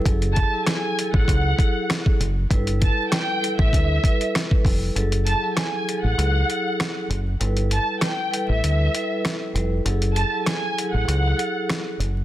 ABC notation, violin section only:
X:1
M:4/4
L:1/16
Q:"Swing 16ths" 1/4=98
K:Glyd
V:1 name="Violin section"
z2 a2 ^g3 f6 z3 | z2 a2 g3 e6 z3 | z2 a2 ^g3 f6 z3 | z2 a2 g3 e6 z3 |
z2 a2 ^g3 f6 z3 |]